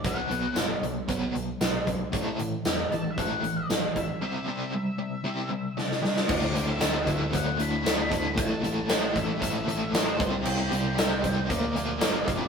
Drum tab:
CC |----------------|----------------|----------------|x---------------|
HH |x-x-x-x-x-x-x-x-|x-x-x-x-x-x-x-x-|----------------|--x-x-x-x-x-x-x-|
TB |----x-------x---|----x-------x---|----------------|----x-------x---|
SD |----o-------o---|----o-------o---|------------oooo|----o-------o---|
BD |o-------o-----o-|o-------o-----o-|----------------|o-----o-o-----o-|

CC |----------------|x---------------|
HH |x-x-x-x-x-x-x-x-|--x-x-x-x-x-x-x-|
TB |----x-------x---|----x-------x---|
SD |----o-------o---|----o-------o---|
BD |o-----o-o-----o-|------o-o-----o-|